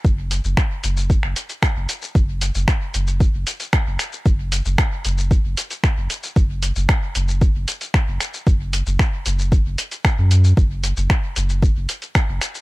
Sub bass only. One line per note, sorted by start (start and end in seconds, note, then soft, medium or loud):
0.05 0.40 F#1 loud
0.44 0.55 F#1 medium
0.83 1.19 F#1 medium
1.23 1.34 F#1 medium
1.76 1.86 F#1 medium
2.15 2.50 F#1 loud
2.55 2.65 F#1 loud
2.94 3.29 F#1 medium
3.33 3.44 F#1 medium
3.86 3.97 F#1 medium
4.26 4.61 F#1 loud
4.65 4.76 F#1 loud
5.05 5.40 F#1 medium
5.44 5.55 F#1 medium
5.97 6.07 F#1 medium
6.36 6.72 F#1 loud
6.76 6.86 F#1 loud
7.15 7.50 F#1 loud
7.55 7.65 F#1 medium
8.07 8.18 F#1 loud
8.47 8.82 F#1 loud
8.86 8.97 F#1 medium
9.25 9.61 F#1 medium
9.65 9.76 F#1 medium
10.18 10.53 F#2 medium
10.57 10.93 F#1 loud
10.97 11.07 F#1 loud
11.36 11.72 F#1 medium
11.76 11.86 F#1 medium
12.28 12.39 F#1 medium